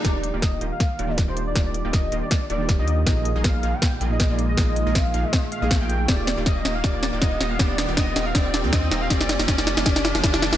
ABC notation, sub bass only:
X:1
M:4/4
L:1/16
Q:"Swing 16ths" 1/4=159
K:Eb
V:1 name="Sub bass" clef=bass
E,,,3 E,,,3 E,,, z3 E,,,3 E,,,3 | E,,,3 E,,,3 E,,, z3 E,,,3 E,,3 | B,,,3 B,,,3 B,,, z3 B,,,3 B,,,3 | B,,,3 B,,,3 B,,, z4 B,,,2 B,,,3 |
E,,,3 E,,,3 E,,,2 E,,,3 E,,,3 E,,,2 | E,,,3 E,,,3 E,,,2 E,,,3 E,,3 E,,,2 | F,,,3 F,,, F,,,3 F,,, F,,,3 F,,, F,,,3 F,,, |]